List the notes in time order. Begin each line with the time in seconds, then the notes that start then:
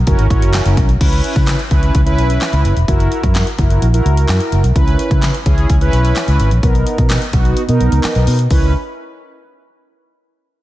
0.07 F#1 C#4 E4 F#4 A#4, kick, closed hi-hat
0.19 G#1, closed hi-hat
0.30 A#1 C#4 E4 F#4 A#4, kick, closed hi-hat
0.42 F#1, closed hi-hat
0.54 snare, clap, closed hi-hat
0.66 F#1, closed hi-hat
0.77 B1, kick, closed hi-hat
0.89 closed hi-hat
1.00 C#2 C#4 E4 B4, kick, closed hi-hat, crash
1.13 closed hi-hat
1.24 closed hi-hat
1.36 C#3, kick, closed hi-hat
1.48 snare, clap, closed hi-hat
1.59 closed hi-hat
1.71 C#2 C#4 E4 B4, kick, closed hi-hat
1.83 closed hi-hat
1.95 C#2, kick, closed hi-hat
2.06 C#4 E4 B4, closed hi-hat
2.18 B1, closed hi-hat
2.30 closed hi-hat
2.41 snare, clap, closed hi-hat
2.53 C#2, closed hi-hat
2.65 F#1, closed hi-hat
2.77 E1, closed hi-hat
2.88 F#1 E4 F#4 A#4, kick, closed hi-hat
3.00 closed hi-hat
3.12 closed hi-hat
3.23 F#2, kick, closed hi-hat
3.35 snare, clap, closed hi-hat
3.47 closed hi-hat
3.58 F#1 E4 F#4 A#4, kick, closed hi-hat
3.70 closed hi-hat
3.82 A#1, closed hi-hat
3.93 E4 F#4 A#4, closed hi-hat
4.05 C#2, closed hi-hat
4.17 closed hi-hat
4.29 F#2, snare, clap, closed hi-hat
4.40 closed hi-hat
4.52 F#1, closed hi-hat
4.64 B1, closed hi-hat
4.75 C#4 E4 B4, kick, closed hi-hat
4.88 closed hi-hat
4.99 closed hi-hat
5.11 C#3, kick, closed hi-hat
5.23 snare, clap, closed hi-hat
5.34 closed hi-hat
5.46 C#2 C#4 E4 G#4, kick, closed hi-hat
5.58 closed hi-hat
5.70 C#2, kick, closed hi-hat
5.81 C#4 E4 B4, closed hi-hat
5.93 B1, closed hi-hat
6.05 closed hi-hat
6.16 snare, clap, closed hi-hat
6.28 C#2, closed hi-hat
6.40 G#1, closed hi-hat
6.51 A#1, closed hi-hat
6.63 B1 B3 D#4 A#4, kick, closed hi-hat
6.75 closed hi-hat
6.87 closed hi-hat
6.98 B2, kick, closed hi-hat
7.10 snare, clap, closed hi-hat
7.22 closed hi-hat
7.33 B1 B3 D#4 F#4, kick, closed hi-hat
7.45 closed hi-hat
7.57 closed hi-hat
7.68 B2 B3 D#4 A#4, closed hi-hat
7.80 B1, closed hi-hat
7.92 C#2, closed hi-hat
8.04 muted fingered electric bass stroke, snare, clap, closed hi-hat
8.15 B1, closed hi-hat
8.27 B2, open hi-hat
8.39 closed hi-hat
8.50 C#2 C#4 E4 B4, kick, open hi-hat